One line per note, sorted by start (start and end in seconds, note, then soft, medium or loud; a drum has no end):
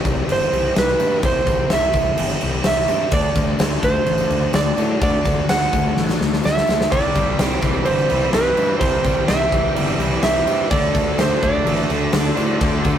0.00 0.96 C3 loud
0.00 0.97 E3 loud
0.00 0.97 G3 loud
0.00 0.98 C4 loud
0.00 3.09 C4 medium
0.00 0.98 E4 loud
0.00 3.08 E4 medium
0.00 3.09 G4 medium
0.00 0.32 D5 loud
0.00 3.09 E5 medium
0.05 0.21 C2 loud
0.05 kick medium
0.05 tambourine medium
0.05 crash medium
0.17 tambourine soft
0.28 0.45 G1 loud
0.28 0.78 C5 loud
0.28 crash medium
0.40 tambourine medium
0.52 0.69 C2 medium
0.52 crash medium
0.64 tambourine soft
0.76 0.93 C2 loud
0.76 1.21 B4 medium
0.76 snare loud
0.76 tambourine medium
0.76 crash medium
0.88 snare soft
0.99 1.16 G2 medium
0.99 1.22 C3 medium
0.99 1.22 E3 medium
0.99 1.22 G3 medium
0.99 1.21 C4 medium
0.99 1.21 E4 medium
0.99 tambourine medium
0.99 crash medium
1.23 1.40 C2 loud
1.23 2.87 C3 medium
1.23 2.88 E3 medium
1.23 2.88 G3 medium
1.23 2.88 C4 loud
1.23 2.87 E4 loud
1.23 1.73 C5 loud
1.23 kick loud
1.23 tambourine soft
1.23 crash medium
1.36 tambourine soft
1.46 1.63 C2 loud
1.46 kick medium
1.46 tambourine medium
1.46 crash medium
1.70 1.88 C2 medium
1.70 2.65 E5 loud
1.70 snare loud
1.70 tambourine loud
1.70 crash medium
1.93 2.10 C2 medium
1.93 kick medium
1.93 tambourine medium
1.93 crash medium
2.07 tambourine soft
2.17 2.35 G1 loud
2.17 crash loud
2.30 tambourine medium
2.41 2.59 C2 loud
2.41 tambourine soft
2.41 crash medium
2.53 tambourine soft
2.64 2.82 C2 loud
2.64 3.14 E5 loud
2.64 snare loud
2.64 tambourine loud
2.64 crash loud
2.88 3.06 G2 medium
2.88 3.12 C3 medium
2.88 3.11 E3 medium
2.88 3.11 G3 medium
2.88 3.11 C4 medium
2.88 3.10 E4 loud
2.88 tambourine medium
2.88 crash medium
3.11 3.29 D2 loud
3.11 4.77 D3 loud
3.11 6.88 A3 medium
3.11 4.77 A3 loud
3.11 6.88 D4 medium
3.11 4.76 D4 medium
3.11 6.88 F#4 medium
3.11 4.75 F#4 loud
3.11 6.88 A4 medium
3.11 3.84 D5 loud
3.11 kick loud
3.11 crash medium
3.24 tambourine soft
3.35 3.52 D2 medium
3.35 kick medium
3.35 snare soft
3.35 tambourine medium
3.35 crash medium
3.59 3.77 D2 loud
3.59 snare loud
3.59 tambourine loud
3.59 crash medium
3.83 4.00 D2 loud
3.83 4.51 C5 loud
3.83 kick medium
3.83 tambourine medium
3.83 crash medium
3.95 tambourine soft
4.06 4.24 A1 medium
4.06 crash medium
4.18 tambourine medium
4.30 4.47 D2 loud
4.30 crash medium
4.42 tambourine soft
4.53 4.71 D2 loud
4.53 4.99 D5 loud
4.53 snare loud
4.53 tambourine loud
4.53 crash medium
4.76 4.95 A2 medium
4.76 4.98 D3 medium
4.76 4.99 A3 medium
4.76 5.00 D4 medium
4.76 4.99 F#4 loud
4.76 tambourine medium
4.76 crash medium
4.99 5.19 D2 loud
4.99 6.65 D3 loud
4.99 6.66 A3 loud
4.99 6.66 D4 medium
4.99 6.66 F#4 loud
4.99 5.47 D5 loud
4.99 kick loud
4.99 tambourine soft
4.99 crash medium
5.24 5.42 D2 medium
5.24 kick medium
5.24 snare soft
5.24 tambourine medium
5.24 crash medium
5.37 tambourine soft
5.49 5.66 D2 loud
5.49 6.45 F#5 loud
5.49 snare loud
5.49 tambourine loud
5.49 crash loud
5.73 5.90 D2 loud
5.73 kick medium
5.73 tambourine medium
5.73 crash medium
5.86 tambourine soft
5.97 6.14 A1 loud
5.97 snare medium
5.97 tambourine soft
6.09 snare medium
6.09 tambourine medium
6.21 6.37 D2 medium
6.21 snare medium
6.33 snare medium
6.44 6.61 D2 medium
6.44 6.94 E5 loud
6.44 snare loud
6.44 tambourine loud
6.57 snare medium
6.67 6.85 D2 medium
6.67 6.91 D3 medium
6.67 6.91 A3 medium
6.67 6.90 D4 medium
6.67 6.90 F#4 medium
6.67 snare loud
6.67 tambourine medium
6.81 snare loud
6.90 7.09 C2 loud
6.90 8.56 C3 loud
6.90 8.10 C3 medium
6.90 8.57 E3 loud
6.90 10.67 G3 medium
6.90 8.57 G3 loud
6.90 10.67 C4 medium
6.90 8.56 C4 loud
6.90 10.67 E4 medium
6.90 10.67 G4 medium
6.90 7.61 D5 loud
6.90 kick loud
6.90 tambourine soft
6.90 crash loud
6.95 8.55 G4 loud
7.03 tambourine soft
7.15 7.32 C2 medium
7.15 7.86 G3 medium
7.15 kick medium
7.15 tambourine medium
7.15 crash medium
7.39 7.56 C2 medium
7.39 8.32 C4 medium
7.39 snare loud
7.39 tambourine loud
7.39 crash loud
7.61 7.80 C2 loud
7.61 8.09 E3 medium
7.61 7.85 C5 loud
7.61 kick medium
7.61 tambourine medium
7.61 crash medium
7.75 tambourine soft
7.85 8.04 G1 loud
7.85 9.05 G3 medium
7.85 8.33 C5 medium
7.85 crash medium
7.98 tambourine medium
8.10 8.27 C2 loud
8.10 8.55 E3 medium
8.10 crash medium
8.22 tambourine soft
8.33 8.51 C2 loud
8.33 9.26 C4 medium
8.33 8.79 B4 loud
8.33 snare loud
8.33 tambourine loud
8.33 crash medium
8.56 8.75 G2 medium
8.56 8.78 C3 medium
8.56 9.51 E3 medium
8.56 8.79 E3 medium
8.56 8.80 G3 medium
8.56 8.80 C4 loud
8.56 8.80 G4 medium
8.56 tambourine medium
8.56 crash medium
8.79 8.98 C2 loud
8.79 10.45 C3 loud
8.79 10.00 C3 medium
8.79 10.45 E3 loud
8.79 10.46 G3 loud
8.79 10.46 C4 loud
8.79 10.46 G4 loud
8.79 9.29 C5 loud
8.79 kick loud
8.79 tambourine soft
8.79 crash medium
8.94 tambourine soft
9.04 9.22 C2 medium
9.04 9.74 G3 medium
9.04 kick medium
9.04 tambourine medium
9.04 crash medium
9.28 9.46 C2 loud
9.28 10.21 C4 medium
9.28 10.19 E5 loud
9.28 snare loud
9.28 tambourine loud
9.28 crash medium
9.52 9.69 C2 loud
9.52 9.99 E3 medium
9.52 kick medium
9.52 crash medium
9.65 tambourine soft
9.75 9.92 G1 loud
9.75 10.71 G3 medium
9.75 crash medium
9.88 tambourine medium
9.98 10.16 C2 loud
9.98 10.46 E3 medium
9.98 crash medium
10.12 tambourine soft
10.22 10.40 C2 loud
10.22 10.71 C4 medium
10.22 10.68 E5 loud
10.22 snare loud
10.22 tambourine loud
10.22 crash loud
10.35 snare soft
10.46 10.63 G2 medium
10.46 10.71 E3 medium
10.46 10.71 G3 medium
10.46 10.70 C4 loud
10.46 10.70 G4 loud
10.46 tambourine medium
10.46 crash medium
10.50 10.71 C3 medium
10.71 10.88 D2 loud
10.71 12.36 D3 loud
10.71 11.41 D3 medium
10.71 12.36 A3 loud
10.71 12.98 A3 medium
10.71 12.98 D4 medium
10.71 12.35 D4 loud
10.71 12.98 F#4 medium
10.71 12.34 F#4 loud
10.71 12.98 A4 medium
10.71 11.20 D5 loud
10.71 kick loud
10.71 tambourine soft
10.71 crash loud
10.83 tambourine soft
10.93 11.12 D2 medium
10.93 11.65 A3 medium
10.93 kick medium
10.93 tambourine medium
10.93 crash medium
11.17 11.34 D2 loud
11.17 12.11 D4 medium
11.17 11.42 C5 loud
11.17 snare loud
11.17 tambourine medium
11.17 crash medium
11.42 11.60 D2 loud
11.42 11.89 D3 medium
11.42 12.98 D5 medium
11.42 kick medium
11.42 crash medium
11.55 tambourine soft
11.65 11.82 A1 loud
11.65 12.82 A3 medium
11.65 crash medium
11.77 tambourine medium
11.90 12.07 D2 medium
11.90 12.35 D3 medium
11.90 crash medium
12.01 tambourine soft
12.12 12.30 D2 loud
12.12 12.98 D4 medium
12.12 12.26 D5 medium
12.12 snare loud
12.12 tambourine medium
12.12 crash loud
12.27 12.98 C5 loud
12.35 12.55 A2 loud
12.35 12.59 D3 medium
12.35 12.58 D3 medium
12.35 12.60 A3 medium
12.35 12.59 D4 medium
12.35 12.59 F#4 medium
12.35 tambourine medium
12.35 crash medium
12.59 12.78 D2 loud
12.59 12.98 D3 loud
12.59 12.98 D3 medium
12.59 12.98 A3 loud
12.59 12.98 D4 loud
12.59 12.98 F#4 loud
12.59 kick loud
12.59 tambourine soft
12.59 crash medium
12.73 tambourine soft
12.83 12.98 D2 medium
12.83 12.98 A3 medium
12.83 kick medium
12.83 tambourine medium
12.83 crash medium